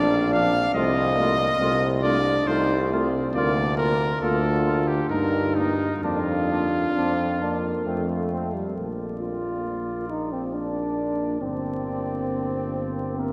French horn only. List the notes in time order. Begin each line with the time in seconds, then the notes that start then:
Already playing: D4
0.75 C4
1.17 A#3
1.60 C4
2.04 D4
2.47 D#4
2.91 C4
3.34 A#3
4.21 F4
5.11 D#4
6.04 D4
9.20 F4
10.09 D#4
10.32 C4
10.53 D4
11.41 C4
13.17 A#3